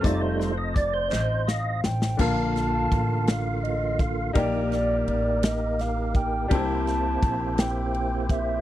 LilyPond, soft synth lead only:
\new Staff \with { instrumentName = "Soft synth lead" } { \time 6/8 \key bes \major \tempo 4. = 56 r4 d''8 ees''8 f''8 g''8 | a''4. f''8 ees''8 f''8 | d''8 d''8 d''8 ees''8 f''8 g''8 | a''4. g''4 e''8 | }